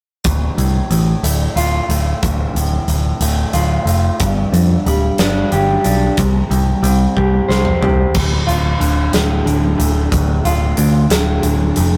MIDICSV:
0, 0, Header, 1, 4, 480
1, 0, Start_track
1, 0, Key_signature, -1, "minor"
1, 0, Tempo, 657895
1, 178, Time_signature, 6, 3, 24, 8
1, 8735, End_track
2, 0, Start_track
2, 0, Title_t, "Clean electric guitar"
2, 0, Program_c, 0, 27
2, 185, Note_on_c, 0, 38, 66
2, 429, Note_on_c, 0, 45, 56
2, 658, Note_off_c, 0, 45, 0
2, 667, Note_on_c, 0, 45, 60
2, 901, Note_on_c, 0, 57, 59
2, 1141, Note_on_c, 0, 65, 76
2, 1379, Note_off_c, 0, 57, 0
2, 1385, Note_off_c, 0, 38, 0
2, 1388, Note_on_c, 0, 57, 59
2, 1630, Note_on_c, 0, 38, 76
2, 1859, Note_off_c, 0, 45, 0
2, 1868, Note_on_c, 0, 45, 62
2, 2098, Note_off_c, 0, 45, 0
2, 2106, Note_on_c, 0, 45, 63
2, 2340, Note_off_c, 0, 57, 0
2, 2344, Note_off_c, 0, 65, 0
2, 2348, Note_on_c, 0, 57, 67
2, 2579, Note_on_c, 0, 65, 77
2, 2818, Note_off_c, 0, 57, 0
2, 2826, Note_on_c, 0, 57, 58
2, 2829, Note_off_c, 0, 38, 0
2, 3062, Note_off_c, 0, 65, 0
2, 3066, Note_off_c, 0, 45, 0
2, 3066, Note_off_c, 0, 57, 0
2, 3076, Note_on_c, 0, 43, 74
2, 3312, Note_on_c, 0, 50, 57
2, 3551, Note_on_c, 0, 55, 65
2, 3793, Note_on_c, 0, 62, 66
2, 4030, Note_on_c, 0, 67, 66
2, 4254, Note_off_c, 0, 62, 0
2, 4263, Note_on_c, 0, 62, 63
2, 4271, Note_off_c, 0, 43, 0
2, 4504, Note_off_c, 0, 62, 0
2, 4506, Note_on_c, 0, 48, 64
2, 4508, Note_off_c, 0, 67, 0
2, 4509, Note_off_c, 0, 50, 0
2, 4509, Note_off_c, 0, 55, 0
2, 4742, Note_on_c, 0, 55, 58
2, 4984, Note_on_c, 0, 60, 63
2, 5228, Note_on_c, 0, 67, 61
2, 5461, Note_on_c, 0, 72, 72
2, 5689, Note_off_c, 0, 67, 0
2, 5698, Note_on_c, 0, 67, 56
2, 5705, Note_off_c, 0, 48, 0
2, 5941, Note_off_c, 0, 67, 0
2, 5942, Note_off_c, 0, 55, 0
2, 5942, Note_off_c, 0, 72, 0
2, 5944, Note_off_c, 0, 60, 0
2, 5948, Note_on_c, 0, 38, 64
2, 6178, Note_on_c, 0, 65, 64
2, 6417, Note_on_c, 0, 50, 62
2, 6653, Note_on_c, 0, 45, 69
2, 6886, Note_off_c, 0, 50, 0
2, 6895, Note_on_c, 0, 50, 67
2, 7134, Note_on_c, 0, 57, 67
2, 7144, Note_off_c, 0, 38, 0
2, 7378, Note_off_c, 0, 65, 0
2, 7380, Note_on_c, 0, 38, 69
2, 7625, Note_on_c, 0, 65, 69
2, 7848, Note_off_c, 0, 50, 0
2, 7855, Note_off_c, 0, 45, 0
2, 7857, Note_on_c, 0, 50, 60
2, 8100, Note_on_c, 0, 45, 66
2, 8326, Note_off_c, 0, 50, 0
2, 8334, Note_off_c, 0, 57, 0
2, 8335, Note_on_c, 0, 50, 68
2, 8576, Note_off_c, 0, 38, 0
2, 8584, Note_on_c, 0, 57, 60
2, 8735, Note_off_c, 0, 45, 0
2, 8735, Note_off_c, 0, 50, 0
2, 8735, Note_off_c, 0, 57, 0
2, 8735, Note_off_c, 0, 65, 0
2, 8735, End_track
3, 0, Start_track
3, 0, Title_t, "Picked electric bass"
3, 0, Program_c, 1, 34
3, 183, Note_on_c, 1, 26, 82
3, 347, Note_off_c, 1, 26, 0
3, 421, Note_on_c, 1, 36, 73
3, 586, Note_off_c, 1, 36, 0
3, 660, Note_on_c, 1, 33, 80
3, 825, Note_off_c, 1, 33, 0
3, 899, Note_on_c, 1, 26, 82
3, 1065, Note_off_c, 1, 26, 0
3, 1138, Note_on_c, 1, 26, 79
3, 1304, Note_off_c, 1, 26, 0
3, 1379, Note_on_c, 1, 26, 80
3, 1545, Note_off_c, 1, 26, 0
3, 1632, Note_on_c, 1, 26, 79
3, 1794, Note_off_c, 1, 26, 0
3, 1859, Note_on_c, 1, 26, 72
3, 2025, Note_off_c, 1, 26, 0
3, 2100, Note_on_c, 1, 26, 81
3, 2267, Note_off_c, 1, 26, 0
3, 2338, Note_on_c, 1, 26, 85
3, 2505, Note_off_c, 1, 26, 0
3, 2581, Note_on_c, 1, 26, 87
3, 2747, Note_off_c, 1, 26, 0
3, 2812, Note_on_c, 1, 29, 81
3, 2982, Note_off_c, 1, 29, 0
3, 3066, Note_on_c, 1, 31, 88
3, 3231, Note_off_c, 1, 31, 0
3, 3301, Note_on_c, 1, 41, 71
3, 3468, Note_off_c, 1, 41, 0
3, 3548, Note_on_c, 1, 26, 86
3, 3712, Note_off_c, 1, 26, 0
3, 3787, Note_on_c, 1, 31, 80
3, 3952, Note_off_c, 1, 31, 0
3, 4030, Note_on_c, 1, 31, 84
3, 4193, Note_off_c, 1, 31, 0
3, 4273, Note_on_c, 1, 35, 78
3, 4435, Note_off_c, 1, 35, 0
3, 4511, Note_on_c, 1, 36, 88
3, 4674, Note_off_c, 1, 36, 0
3, 4747, Note_on_c, 1, 36, 81
3, 4912, Note_off_c, 1, 36, 0
3, 4981, Note_on_c, 1, 36, 90
3, 5147, Note_off_c, 1, 36, 0
3, 5230, Note_on_c, 1, 36, 84
3, 5393, Note_off_c, 1, 36, 0
3, 5467, Note_on_c, 1, 36, 82
3, 5631, Note_off_c, 1, 36, 0
3, 5708, Note_on_c, 1, 36, 84
3, 5872, Note_off_c, 1, 36, 0
3, 5946, Note_on_c, 1, 26, 83
3, 6148, Note_off_c, 1, 26, 0
3, 6183, Note_on_c, 1, 26, 82
3, 6385, Note_off_c, 1, 26, 0
3, 6424, Note_on_c, 1, 26, 85
3, 6626, Note_off_c, 1, 26, 0
3, 6666, Note_on_c, 1, 26, 80
3, 6867, Note_off_c, 1, 26, 0
3, 6902, Note_on_c, 1, 26, 85
3, 7104, Note_off_c, 1, 26, 0
3, 7145, Note_on_c, 1, 26, 76
3, 7346, Note_off_c, 1, 26, 0
3, 7384, Note_on_c, 1, 26, 92
3, 7585, Note_off_c, 1, 26, 0
3, 7626, Note_on_c, 1, 26, 77
3, 7825, Note_off_c, 1, 26, 0
3, 7865, Note_on_c, 1, 38, 84
3, 8065, Note_off_c, 1, 38, 0
3, 8100, Note_on_c, 1, 26, 90
3, 8302, Note_off_c, 1, 26, 0
3, 8341, Note_on_c, 1, 26, 80
3, 8541, Note_off_c, 1, 26, 0
3, 8589, Note_on_c, 1, 29, 89
3, 8735, Note_off_c, 1, 29, 0
3, 8735, End_track
4, 0, Start_track
4, 0, Title_t, "Drums"
4, 177, Note_on_c, 9, 42, 77
4, 182, Note_on_c, 9, 36, 95
4, 250, Note_off_c, 9, 42, 0
4, 254, Note_off_c, 9, 36, 0
4, 426, Note_on_c, 9, 42, 53
4, 498, Note_off_c, 9, 42, 0
4, 662, Note_on_c, 9, 42, 51
4, 735, Note_off_c, 9, 42, 0
4, 905, Note_on_c, 9, 42, 72
4, 978, Note_off_c, 9, 42, 0
4, 1145, Note_on_c, 9, 42, 59
4, 1218, Note_off_c, 9, 42, 0
4, 1385, Note_on_c, 9, 42, 61
4, 1458, Note_off_c, 9, 42, 0
4, 1625, Note_on_c, 9, 42, 78
4, 1626, Note_on_c, 9, 36, 108
4, 1698, Note_off_c, 9, 42, 0
4, 1699, Note_off_c, 9, 36, 0
4, 1870, Note_on_c, 9, 42, 57
4, 1943, Note_off_c, 9, 42, 0
4, 2101, Note_on_c, 9, 42, 50
4, 2174, Note_off_c, 9, 42, 0
4, 2340, Note_on_c, 9, 42, 76
4, 2413, Note_off_c, 9, 42, 0
4, 2578, Note_on_c, 9, 42, 54
4, 2651, Note_off_c, 9, 42, 0
4, 2825, Note_on_c, 9, 42, 53
4, 2898, Note_off_c, 9, 42, 0
4, 3062, Note_on_c, 9, 42, 73
4, 3067, Note_on_c, 9, 36, 98
4, 3135, Note_off_c, 9, 42, 0
4, 3139, Note_off_c, 9, 36, 0
4, 3310, Note_on_c, 9, 42, 56
4, 3383, Note_off_c, 9, 42, 0
4, 3549, Note_on_c, 9, 42, 46
4, 3622, Note_off_c, 9, 42, 0
4, 3781, Note_on_c, 9, 42, 65
4, 3789, Note_on_c, 9, 38, 99
4, 3854, Note_off_c, 9, 42, 0
4, 3862, Note_off_c, 9, 38, 0
4, 4027, Note_on_c, 9, 42, 56
4, 4099, Note_off_c, 9, 42, 0
4, 4264, Note_on_c, 9, 42, 59
4, 4337, Note_off_c, 9, 42, 0
4, 4504, Note_on_c, 9, 42, 73
4, 4507, Note_on_c, 9, 36, 97
4, 4577, Note_off_c, 9, 42, 0
4, 4580, Note_off_c, 9, 36, 0
4, 4752, Note_on_c, 9, 42, 54
4, 4825, Note_off_c, 9, 42, 0
4, 4989, Note_on_c, 9, 42, 60
4, 5062, Note_off_c, 9, 42, 0
4, 5229, Note_on_c, 9, 36, 48
4, 5301, Note_off_c, 9, 36, 0
4, 5475, Note_on_c, 9, 38, 61
4, 5548, Note_off_c, 9, 38, 0
4, 5582, Note_on_c, 9, 45, 61
4, 5655, Note_off_c, 9, 45, 0
4, 5709, Note_on_c, 9, 43, 76
4, 5782, Note_off_c, 9, 43, 0
4, 5942, Note_on_c, 9, 49, 81
4, 5946, Note_on_c, 9, 36, 99
4, 6015, Note_off_c, 9, 49, 0
4, 6019, Note_off_c, 9, 36, 0
4, 6192, Note_on_c, 9, 42, 51
4, 6265, Note_off_c, 9, 42, 0
4, 6429, Note_on_c, 9, 42, 48
4, 6502, Note_off_c, 9, 42, 0
4, 6663, Note_on_c, 9, 42, 72
4, 6670, Note_on_c, 9, 38, 103
4, 6736, Note_off_c, 9, 42, 0
4, 6743, Note_off_c, 9, 38, 0
4, 6911, Note_on_c, 9, 42, 52
4, 6984, Note_off_c, 9, 42, 0
4, 7148, Note_on_c, 9, 42, 55
4, 7221, Note_off_c, 9, 42, 0
4, 7384, Note_on_c, 9, 36, 94
4, 7386, Note_on_c, 9, 42, 72
4, 7457, Note_off_c, 9, 36, 0
4, 7459, Note_off_c, 9, 42, 0
4, 7626, Note_on_c, 9, 42, 55
4, 7699, Note_off_c, 9, 42, 0
4, 7859, Note_on_c, 9, 42, 59
4, 7932, Note_off_c, 9, 42, 0
4, 8101, Note_on_c, 9, 42, 80
4, 8108, Note_on_c, 9, 38, 93
4, 8174, Note_off_c, 9, 42, 0
4, 8181, Note_off_c, 9, 38, 0
4, 8341, Note_on_c, 9, 42, 61
4, 8414, Note_off_c, 9, 42, 0
4, 8579, Note_on_c, 9, 42, 59
4, 8652, Note_off_c, 9, 42, 0
4, 8735, End_track
0, 0, End_of_file